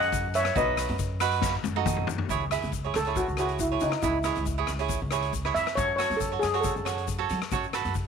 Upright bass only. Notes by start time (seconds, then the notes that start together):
Already playing: F#2
0.56 B1
0.90 F#2
1.65 F#2
2.30 C#2
2.64 C#2
2.96 C#2
3.28 C#2
3.82 C#3
4.03 C#2
4.37 C#2
4.69 C#2
5.02 C#2
5.55 F2
5.77 F#2
6.10 F#2
6.43 F#2
6.76 F#2
7.31 F#3
7.52 F#2
7.85 F#2